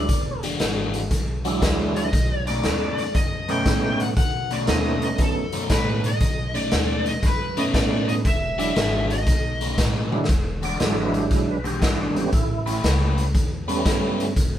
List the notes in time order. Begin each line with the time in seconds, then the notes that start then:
Already playing: D5
0.09 E1, kick, closed hi-hat
0.43 E3 G#3 D4 F#4, closed hi-hat
0.60 G#1 E3 G#3 D4 F#4, snare, closed hi-hat
0.94 closed hi-hat
1.11 B1, kick, snare, closed hi-hat
1.45 E3 F#3 G#3 D4 E4 F#4, closed hi-hat
1.62 D2 E3 G#3 D4 F#4, kick, snare, closed hi-hat
1.96 D#5, closed hi-hat
2.13 B1, kick, closed hi-hat
2.47 B2 A3 C#4 D#4 D5, closed hi-hat
2.63 D#2 B2 A3 C#4 D#4, snare, closed hi-hat
2.98 D5, closed hi-hat
3.15 F#2 D#5, kick, closed hi-hat
3.48 B2 A3 B3 C#4 D#4 G5, closed hi-hat
3.66 A2 B2 A3 C#4 D#4, kick, snare, closed hi-hat
4.00 F#5, closed hi-hat
4.17 B1 F#5, kick, closed hi-hat
4.51 B2 A3 C#4 D#4 D5, closed hi-hat
4.66 D#2 B2 A3 A#3 C4 C#4 D4 D#4 E4 D#5, snare, closed hi-hat
5.00 A3 B3 C#4 D#4 D#5, closed hi-hat
5.18 F#2 A4, kick, closed hi-hat
5.52 B2 A3 C#4 D#4, closed hi-hat
5.69 A2 B2 A3 C#4 D#4 B4, kick, snare, closed hi-hat
6.04 D#5, closed hi-hat
6.20 B1, kick, closed hi-hat
6.54 B2 A3 C#4 D#4 D5, closed hi-hat
6.71 D#2 B2 A3 C#4 D#4, snare, closed hi-hat
7.06 D#5, closed hi-hat
7.23 F#2 B4, kick, snare, closed hi-hat
7.57 B2 A3 B3 C#4 D#4 D#5, closed hi-hat
7.74 A2 B2 A3 C#4 D#4 D5, kick, snare, closed hi-hat
8.09 D#5, closed hi-hat
8.25 E1 E5, kick, closed hi-hat
8.58 E3 F#3 G#3 D4 E4 F#4 E5, closed hi-hat
8.75 G#1 E3 G#3 D4 F#4, snare, closed hi-hat
9.10 D#5, closed hi-hat
9.26 B1, kick, snare, closed hi-hat
9.61 B2 A3 C#4 D#4, closed hi-hat
9.78 A2 B2 A3 C#4 D#4, kick, snare, closed hi-hat
10.11 F#3 G#3 D4 E4, high tom
10.24 snare
10.29 E1, kick, closed hi-hat
10.63 E3 G#3 D4 F#4 D5, closed hi-hat
10.79 G#1 E3 F#3 G#3 D4 E4 F#4, snare, closed hi-hat
10.99 B4
11.14 G4, closed hi-hat
11.31 B1 E4, kick, snare, closed hi-hat
11.51 B4
11.64 E3 G#3 D4 F#4 G4, closed hi-hat
11.82 G#1 E3 G#3 D4 E4 F#4, kick, snare, closed hi-hat
12.02 D4
12.14 G3 A3 B3 C#4 G4, closed hi-hat
12.33 A1 E4, kick, closed hi-hat
12.66 A3 C#4 G4 B4, closed hi-hat
12.83 C#2 A3 C#4 G4 B4, snare, closed hi-hat
13.18 closed hi-hat
13.35 E2, kick, closed hi-hat
13.68 G3 A3 B3 C#4 G4 B4, closed hi-hat
13.86 G2 A3 C#4 G4 B4, kick, snare, closed hi-hat
14.20 closed hi-hat
14.36 E1, kick, closed hi-hat